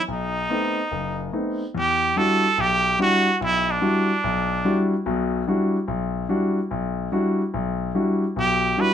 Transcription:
0.08 0.44 B1 medium
0.08 1.30 D#4 medium
0.50 0.78 A3 soft
0.50 0.78 B3 soft
0.50 0.78 C4 soft
0.50 0.79 D#4 medium
0.92 1.27 F#1 medium
1.32 1.61 A3 soft
1.32 1.61 B3 soft
1.32 1.61 C4 soft
1.32 1.62 D#4 medium
1.75 2.10 E2 medium
1.79 2.19 G4 medium
2.16 2.44 G3 medium
2.16 2.44 D4 soft
2.16 2.45 E4 soft
2.16 2.45 F#4 medium
2.16 2.62 A4 medium
2.58 2.93 B1 medium
2.58 3.00 G4 medium
2.99 3.27 G3 medium
2.99 3.27 D4 medium
2.99 3.27 E4 soft
2.99 3.28 F#4 medium
2.99 3.39 F#4 medium
3.41 3.76 B1 medium
3.41 3.72 E4 medium
3.71 4.93 D4 medium
3.81 4.10 G3 medium
3.81 4.10 D4 soft
3.81 4.10 E4 soft
3.81 4.10 F#4 medium
4.24 4.59 B1 medium
4.65 4.93 G3 medium
4.65 4.93 D4 soft
4.65 4.93 E4 soft
4.65 4.93 F#4 medium
5.06 5.41 B1 medium
5.06 5.41 B2 medium
5.48 5.76 G3 medium
5.48 5.76 D4 medium
5.48 5.76 E4 soft
5.48 5.76 F#4 medium
5.88 6.24 B1 medium
6.29 6.58 G3 medium
6.29 6.58 D4 medium
6.29 6.58 E4 soft
6.29 6.58 F#4 medium
6.71 7.06 B1 medium
7.12 7.40 G3 medium
7.12 7.40 D4 soft
7.12 7.41 E4 soft
7.12 7.41 F#4 medium
7.54 7.89 B1 medium
7.95 8.23 G3 medium
7.95 8.23 D4 soft
7.95 8.23 E4 soft
7.95 8.23 F#4 medium
8.36 8.72 B1 medium
8.36 8.72 B2 medium
8.36 8.82 G4 medium
8.77 8.94 G3 medium
8.77 8.94 D4 soft
8.77 8.94 E4 soft
8.77 8.94 F#4 medium
8.77 8.94 B4 medium

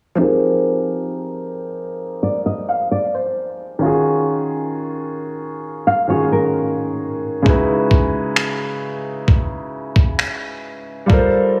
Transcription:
0.15 3.77 F3 medium
0.15 3.77 C4 medium
0.15 3.78 D#4 medium
0.20 3.79 G4 medium
0.20 3.79 G#4 medium
0.20 3.80 A#4 medium
2.23 2.45 D5 medium
2.46 2.69 D#5 medium
2.69 2.90 F5 medium
2.91 3.14 D5 medium
3.14 3.79 C5 medium
3.79 6.04 D#3 medium
3.79 6.05 C#4 medium
3.79 6.06 F4 medium
3.84 6.06 F#4 medium
3.84 6.07 G#4 medium
5.87 6.08 F5 medium
6.08 7.45 D#3 medium
6.08 7.45 C#4 soft
6.08 7.46 F4 soft
6.08 7.46 F#4 soft
6.08 7.47 G#4 medium
6.08 6.31 C#5 medium
6.32 7.42 A#4 medium
7.42 11.04 C#3 medium
7.42 11.04 G#3 medium
7.42 11.05 D#4 medium
7.42 kick loud
7.47 11.06 E4 medium
7.47 11.07 F#4 medium
7.47 11.07 B4 medium
7.91 kick medium
8.36 finger snap loud
9.28 kick medium
9.96 kick medium
10.19 finger snap loud
11.06 11.60 G3 medium
11.06 11.60 F4 medium
11.06 11.60 A4 medium
11.06 kick loud
11.12 11.60 A#4 medium
11.12 11.60 C5 medium

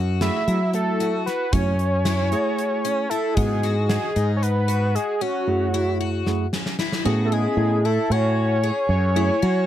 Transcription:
0.00 0.29 F#2 medium
0.00 0.41 F#4 medium
0.21 0.58 A3 medium
0.21 0.58 E4 medium
0.21 0.58 G#4 medium
0.21 0.70 E5 loud
0.21 0.70 B5 loud
0.21 snare medium
0.21 closed hi-hat medium
0.48 1.27 F#3 medium
0.48 0.94 E4 medium
0.48 closed hi-hat medium
0.74 1.11 A3 medium
0.74 1.11 E4 soft
0.74 1.11 A4 medium
0.74 1.23 A4 medium
0.74 1.23 E5 medium
0.74 closed hi-hat medium
1.00 1.46 F#4 medium
1.00 closed hi-hat medium
1.26 1.54 B4 medium
1.26 1.54 F#5 medium
1.26 snare soft
1.26 closed hi-hat soft
1.52 2.33 F#2 medium
1.52 1.72 A3 medium
1.52 1.98 C#4 medium
1.52 1.72 E4 soft
1.52 1.72 F#4 medium
1.52 3.11 C#5 loud
1.52 3.11 G#5 loud
1.52 kick medium
1.52 closed hi-hat medium
1.79 closed hi-hat soft
2.05 2.28 E4 medium
2.05 snare medium
2.05 closed hi-hat medium
2.32 3.06 A3 medium
2.32 3.06 E4 medium
2.32 2.78 F#4 medium
2.32 3.06 G#4 medium
2.32 closed hi-hat medium
2.59 closed hi-hat medium
2.85 3.07 C#4 medium
2.85 closed hi-hat medium
3.10 3.34 E4 medium
3.10 3.36 A4 medium
3.10 3.36 E5 medium
3.10 closed hi-hat soft
3.34 3.97 G#2 medium
3.34 3.60 B3 medium
3.34 3.74 B3 medium
3.34 3.74 D#4 medium
3.34 3.74 F#4 medium
3.34 3.88 G#4 medium
3.34 3.88 D#5 medium
3.34 kick medium
3.34 closed hi-hat medium
3.63 4.09 F#4 medium
3.63 snare soft
3.63 closed hi-hat soft
3.89 4.32 G#4 medium
3.89 4.32 D#5 medium
3.89 snare loud
3.89 closed hi-hat medium
4.16 4.96 G#2 medium
4.16 4.62 D#4 medium
4.16 closed hi-hat medium
4.37 4.44 C#5 medium
4.37 4.44 G#5 medium
4.42 4.96 B4 medium
4.42 4.96 F#5 medium
4.42 closed hi-hat medium
4.68 5.14 F#4 medium
4.68 closed hi-hat medium
4.95 5.23 G#4 medium
4.95 5.23 D#5 medium
4.95 closed hi-hat medium
5.21 5.67 C#4 medium
5.21 6.53 F#4 medium
5.21 6.53 C#5 medium
5.47 6.21 F#2 medium
5.47 6.21 A3 medium
5.47 6.21 E4 medium
5.47 6.22 G#4 medium
5.74 5.97 E4 medium
6.01 6.46 F#4 medium
6.26 6.45 F#2 medium
6.26 6.45 A3 medium
6.26 6.45 E4 medium
6.26 6.45 G#4 medium
6.26 snare soft
6.53 6.76 C#4 medium
6.53 snare medium
6.66 snare medium
6.79 7.02 E4 medium
6.79 snare medium
6.92 snare medium
7.05 7.46 A2 medium
7.05 7.79 B3 medium
7.05 7.79 C#4 medium
7.05 7.28 F#4 medium
7.05 7.79 G#4 medium
7.25 7.34 A4 medium
7.25 7.34 E5 medium
7.32 7.78 E4 medium
7.32 7.87 G#4 medium
7.32 7.87 D#5 medium
7.57 7.97 A2 medium
7.85 8.08 E4 medium
7.85 8.13 A4 medium
7.85 8.13 E5 medium
8.10 8.70 A2 medium
8.10 8.57 F#4 medium
8.10 8.89 C#5 medium
8.10 8.89 G#5 medium
8.63 9.09 G#4 medium
8.89 9.29 F#2 medium
8.89 9.66 C#5 loud
8.89 9.66 G#5 loud
9.16 9.34 A3 medium
9.16 9.39 E4 medium
9.16 9.35 E4 medium
9.16 9.35 G#4 medium
9.42 9.66 F#3 medium
9.42 9.65 F#4 medium

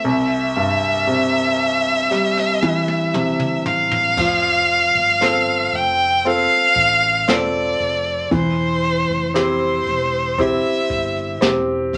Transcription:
0.00 3.64 E5 medium
0.04 4.14 C2 medium
0.56 2.59 G2 soft
1.07 3.10 C3 soft
2.11 4.14 G3 soft
2.11 snare soft
2.37 snare soft
2.62 4.14 E3 soft
2.62 high tom medium
2.88 high tom medium
3.14 4.15 C3 soft
3.14 mid tom medium
3.39 mid tom medium
3.66 5.77 F5 medium
3.66 floor tom medium
3.91 floor tom medium
4.17 4.91 F1 medium
4.17 8.28 F3 medium
4.17 kick medium
4.17 crash medium
4.69 closed hi-hat medium
4.95 5.69 G1 medium
5.21 6.21 C4 soft
5.21 6.22 F4 soft
5.21 6.22 A4 soft
5.21 snare medium
5.21 closed hi-hat medium
5.72 6.46 F1 medium
5.72 6.28 G5 medium
5.72 closed hi-hat medium
6.24 7.25 C4 soft
6.24 7.25 F4 soft
6.24 7.26 A4 soft
6.24 7.32 F5 medium
6.24 closed hi-hat medium
6.76 7.24 A1 medium
6.76 kick medium
6.76 closed hi-hat medium
7.27 7.77 E1 medium
7.27 8.28 C4 soft
7.27 8.28 F4 soft
7.27 8.29 A4 soft
7.27 8.33 D5 medium
7.27 snare medium
7.27 closed hi-hat medium
7.80 8.28 F1 medium
7.80 closed hi-hat medium
8.31 9.05 E1 medium
8.31 11.98 E3 medium
8.31 9.33 C5 medium
8.31 kick medium
8.31 closed hi-hat medium
8.83 closed hi-hat medium
9.09 9.83 F1 medium
9.34 10.35 C4 soft
9.34 10.35 E4 soft
9.34 10.35 G4 soft
9.34 10.43 C5 medium
9.34 snare medium
9.34 closed hi-hat medium
9.86 10.60 E1 medium
9.86 closed hi-hat medium
10.38 11.39 C4 soft
10.38 11.39 E4 soft
10.38 11.39 G4 soft
10.38 11.43 E5 medium
10.38 kick medium
10.38 closed hi-hat medium
10.90 11.38 G1 medium
10.90 kick medium
10.90 closed hi-hat medium
11.16 closed hi-hat soft
11.41 11.90 E1 medium
11.41 11.98 C4 soft
11.41 11.98 G4 medium
11.41 snare medium
11.41 closed hi-hat medium
11.93 11.98 C2 medium
11.93 11.98 F5 loud
11.93 kick medium
11.93 closed hi-hat medium

